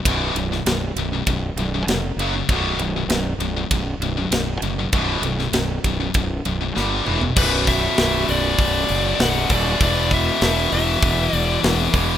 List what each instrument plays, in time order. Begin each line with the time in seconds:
0.05 fingered electric bass B0, distorted electric guitar B1 F#2 B2, kick, ride
0.35 fingered electric bass B0, distorted electric guitar B1 F#2, ride
0.51 distorted electric guitar B1 F#2, snare
0.66 fingered electric bass B0, distorted electric guitar B1 F#2, snare, ride
0.96 fingered electric bass B0, distorted electric guitar B1 F#2, ride
1.12 distorted electric guitar B1 F#2
1.27 fingered electric bass B0, distorted electric guitar B1 F#2, kick, ride
1.56 fingered electric bass B0, distorted electric guitar B1 F#2, ride
1.74 distorted electric guitar B1 F#2
1.87 fingered electric bass F1, distorted electric guitar B1 F#2, snare, ride
2.16 fingered electric bass F#1, distorted electric guitar F#2 C#3 F#3, ride
2.35 distorted electric guitar F#2 C#3
2.49 fingered electric bass B0, distorted electric guitar B1 F#2 B2, kick, ride
2.77 fingered electric bass B0, distorted electric guitar B1 F#2, ride
2.96 distorted electric guitar B1 F#2
3.08 fingered electric bass B0, distorted electric guitar B1 F#2, snare, ride
3.39 fingered electric bass B0, distorted electric guitar F#2, ride
3.43 distorted electric guitar B1
3.56 distorted electric guitar B1 F#2
3.71 fingered electric bass B0, distorted electric guitar B1 F#2, kick, ride
4.00 fingered electric bass B0, distorted electric guitar B1 F#2, ride
4.18 distorted electric guitar B1 F#2
4.31 fingered electric bass B0, distorted electric guitar B1 F#2, snare, ride
4.62 fingered electric bass F#1, distorted electric guitar B1 F#2, ride
4.78 distorted electric guitar B1 F#2
4.93 fingered electric bass B0, distorted electric guitar B1 F#2 B2, kick, ride
5.22 fingered electric bass B0, distorted electric guitar B1 F#2, ride
5.39 distorted electric guitar B1 F#2, snare
5.53 fingered electric bass B0, distorted electric guitar B1 F#2, snare, ride
5.84 fingered electric bass B0, distorted electric guitar B1 F#2, kick, ride
6.00 distorted electric guitar B1 F#2
6.14 fingered electric bass B0, distorted electric guitar B1 F#2, kick, ride
6.45 fingered electric bass B0, distorted electric guitar B1 F#2, ride
6.61 distorted electric guitar B1 F#2
6.75 fingered electric bass G1, distorted electric guitar G2 D3 G3, snare
7.06 fingered electric bass E1, distorted electric guitar E2 B2 E3, mid tom
7.21 distorted electric guitar E2 B2, floor tom
7.36 fingered electric bass B0, distorted electric guitar B1 F#2 B2, lead electric guitar B4, kick, crash
7.67 lead electric guitar E5, kick, open hi-hat
7.97 fingered electric bass B0, snare, open hi-hat
8.28 fingered electric bass B0, lead electric guitar D5, open hi-hat
8.58 fingered electric bass B0, kick, open hi-hat
8.88 fingered electric bass F#1, open hi-hat
9.19 fingered electric bass B0, lead electric guitar F#5, snare, open hi-hat
9.49 fingered electric bass D#1, distorted electric guitar B1 F#2 B2, lead electric guitar D5, kick, open hi-hat
9.80 fingered electric bass E1, distorted electric guitar E2 B2 E3, lead electric guitar D5, kick, open hi-hat
10.11 lead electric guitar E5, kick, open hi-hat
10.41 fingered electric bass E1, lead electric guitar E5, snare, open hi-hat
10.72 fingered electric bass E1, lead electric guitar E5, open hi-hat
11.02 fingered electric bass E1, kick, open hi-hat
11.33 fingered electric bass E1, lead electric guitar D5, open hi-hat
11.64 fingered electric bass E1, snare, open hi-hat
11.93 fingered electric bass E1, distorted electric guitar E2 B2 E3, kick, open hi-hat